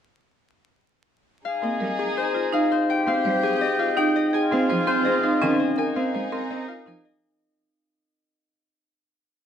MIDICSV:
0, 0, Header, 1, 6, 480
1, 0, Start_track
1, 0, Key_signature, -4, "minor"
1, 0, Tempo, 361446
1, 1919, Time_signature, 4, 2, 24, 8
1, 12551, End_track
2, 0, Start_track
2, 0, Title_t, "Harp"
2, 0, Program_c, 0, 46
2, 1925, Note_on_c, 0, 77, 71
2, 2168, Note_on_c, 0, 75, 54
2, 2641, Note_on_c, 0, 68, 78
2, 2885, Note_on_c, 0, 72, 63
2, 3112, Note_off_c, 0, 75, 0
2, 3128, Note_on_c, 0, 75, 55
2, 3347, Note_off_c, 0, 77, 0
2, 3363, Note_on_c, 0, 77, 80
2, 3589, Note_off_c, 0, 72, 0
2, 3605, Note_on_c, 0, 72, 68
2, 3847, Note_on_c, 0, 79, 81
2, 3860, Note_off_c, 0, 77, 0
2, 4083, Note_on_c, 0, 77, 68
2, 4542, Note_off_c, 0, 68, 0
2, 4558, Note_on_c, 0, 68, 87
2, 4780, Note_off_c, 0, 75, 0
2, 4796, Note_on_c, 0, 75, 72
2, 5020, Note_off_c, 0, 77, 0
2, 5036, Note_on_c, 0, 77, 67
2, 5251, Note_off_c, 0, 79, 0
2, 5267, Note_on_c, 0, 79, 94
2, 5504, Note_off_c, 0, 75, 0
2, 5520, Note_on_c, 0, 75, 78
2, 5765, Note_on_c, 0, 80, 93
2, 5772, Note_off_c, 0, 79, 0
2, 5779, Note_off_c, 0, 75, 0
2, 5983, Note_off_c, 0, 77, 0
2, 5999, Note_on_c, 0, 77, 74
2, 6218, Note_off_c, 0, 80, 0
2, 6234, Note_on_c, 0, 80, 76
2, 6454, Note_off_c, 0, 72, 0
2, 6470, Note_on_c, 0, 72, 93
2, 6701, Note_on_c, 0, 75, 74
2, 6933, Note_off_c, 0, 77, 0
2, 6949, Note_on_c, 0, 77, 66
2, 7175, Note_off_c, 0, 80, 0
2, 7191, Note_on_c, 0, 80, 85
2, 7417, Note_off_c, 0, 75, 0
2, 7433, Note_on_c, 0, 75, 62
2, 7663, Note_off_c, 0, 80, 0
2, 7679, Note_on_c, 0, 80, 78
2, 7694, Note_off_c, 0, 72, 0
2, 7899, Note_off_c, 0, 77, 0
2, 7915, Note_on_c, 0, 77, 57
2, 8143, Note_off_c, 0, 80, 0
2, 8159, Note_on_c, 0, 80, 63
2, 8392, Note_on_c, 0, 70, 76
2, 8620, Note_off_c, 0, 75, 0
2, 8635, Note_on_c, 0, 75, 63
2, 8858, Note_off_c, 0, 77, 0
2, 8874, Note_on_c, 0, 77, 58
2, 9111, Note_off_c, 0, 80, 0
2, 9127, Note_on_c, 0, 80, 80
2, 9347, Note_off_c, 0, 75, 0
2, 9363, Note_on_c, 0, 75, 66
2, 9615, Note_off_c, 0, 70, 0
2, 9616, Note_off_c, 0, 77, 0
2, 9618, Note_off_c, 0, 68, 0
2, 9620, Note_off_c, 0, 75, 0
2, 9622, Note_off_c, 0, 80, 0
2, 12551, End_track
3, 0, Start_track
3, 0, Title_t, "Oboe"
3, 0, Program_c, 1, 68
3, 1919, Note_on_c, 1, 68, 58
3, 3546, Note_off_c, 1, 68, 0
3, 3844, Note_on_c, 1, 67, 70
3, 5468, Note_off_c, 1, 67, 0
3, 5765, Note_on_c, 1, 65, 86
3, 7389, Note_off_c, 1, 65, 0
3, 7690, Note_on_c, 1, 63, 65
3, 9312, Note_off_c, 1, 63, 0
3, 12551, End_track
4, 0, Start_track
4, 0, Title_t, "Marimba"
4, 0, Program_c, 2, 12
4, 2155, Note_on_c, 2, 60, 55
4, 2396, Note_on_c, 2, 70, 56
4, 2470, Note_off_c, 2, 60, 0
4, 2710, Note_off_c, 2, 70, 0
4, 3111, Note_on_c, 2, 65, 65
4, 3352, Note_on_c, 2, 63, 84
4, 3428, Note_off_c, 2, 65, 0
4, 3668, Note_off_c, 2, 63, 0
4, 4077, Note_on_c, 2, 60, 70
4, 4318, Note_on_c, 2, 72, 73
4, 4390, Note_off_c, 2, 60, 0
4, 4631, Note_off_c, 2, 72, 0
4, 5035, Note_on_c, 2, 65, 73
4, 5269, Note_on_c, 2, 63, 95
4, 5350, Note_off_c, 2, 65, 0
4, 5587, Note_off_c, 2, 63, 0
4, 5751, Note_on_c, 2, 68, 91
4, 5992, Note_on_c, 2, 60, 75
4, 6068, Note_off_c, 2, 68, 0
4, 6234, Note_on_c, 2, 72, 70
4, 6309, Note_off_c, 2, 60, 0
4, 6472, Note_on_c, 2, 60, 103
4, 6549, Note_off_c, 2, 72, 0
4, 6718, Note_on_c, 2, 68, 69
4, 6789, Note_off_c, 2, 60, 0
4, 6953, Note_on_c, 2, 63, 76
4, 7031, Note_off_c, 2, 68, 0
4, 7192, Note_on_c, 2, 61, 88
4, 7269, Note_off_c, 2, 63, 0
4, 7509, Note_off_c, 2, 61, 0
4, 7674, Note_on_c, 2, 70, 76
4, 7918, Note_on_c, 2, 60, 62
4, 7989, Note_off_c, 2, 70, 0
4, 8156, Note_on_c, 2, 72, 63
4, 8231, Note_off_c, 2, 60, 0
4, 8397, Note_on_c, 2, 60, 88
4, 8470, Note_off_c, 2, 72, 0
4, 8640, Note_on_c, 2, 70, 60
4, 8710, Note_off_c, 2, 60, 0
4, 8876, Note_on_c, 2, 65, 60
4, 8951, Note_off_c, 2, 70, 0
4, 9114, Note_on_c, 2, 63, 81
4, 9190, Note_off_c, 2, 65, 0
4, 9429, Note_off_c, 2, 63, 0
4, 12551, End_track
5, 0, Start_track
5, 0, Title_t, "String section"
5, 0, Program_c, 3, 48
5, 1916, Note_on_c, 3, 63, 61
5, 1923, Note_on_c, 3, 68, 66
5, 3545, Note_off_c, 3, 63, 0
5, 3548, Note_off_c, 3, 68, 0
5, 3845, Note_on_c, 3, 60, 71
5, 3847, Note_on_c, 3, 79, 72
5, 5469, Note_off_c, 3, 60, 0
5, 5470, Note_off_c, 3, 79, 0
5, 5756, Note_on_c, 3, 60, 86
5, 5758, Note_on_c, 3, 65, 81
5, 7384, Note_off_c, 3, 60, 0
5, 7386, Note_off_c, 3, 65, 0
5, 7675, Note_on_c, 3, 63, 68
5, 7675, Note_on_c, 3, 68, 67
5, 9304, Note_off_c, 3, 63, 0
5, 9304, Note_off_c, 3, 68, 0
5, 12551, End_track
6, 0, Start_track
6, 0, Title_t, "Cello"
6, 0, Program_c, 4, 42
6, 2155, Note_on_c, 4, 58, 60
6, 2336, Note_off_c, 4, 58, 0
6, 2395, Note_on_c, 4, 55, 58
6, 2577, Note_off_c, 4, 55, 0
6, 4077, Note_on_c, 4, 60, 74
6, 4258, Note_off_c, 4, 60, 0
6, 4315, Note_on_c, 4, 55, 74
6, 4497, Note_off_c, 4, 55, 0
6, 6002, Note_on_c, 4, 60, 84
6, 6181, Note_off_c, 4, 60, 0
6, 6239, Note_on_c, 4, 53, 75
6, 6419, Note_off_c, 4, 53, 0
6, 6721, Note_on_c, 4, 60, 66
6, 6900, Note_off_c, 4, 60, 0
6, 7197, Note_on_c, 4, 51, 74
6, 7378, Note_off_c, 4, 51, 0
6, 7912, Note_on_c, 4, 60, 65
6, 8095, Note_off_c, 4, 60, 0
6, 8150, Note_on_c, 4, 56, 64
6, 8333, Note_off_c, 4, 56, 0
6, 8633, Note_on_c, 4, 60, 58
6, 8815, Note_off_c, 4, 60, 0
6, 9113, Note_on_c, 4, 53, 72
6, 9295, Note_off_c, 4, 53, 0
6, 12551, End_track
0, 0, End_of_file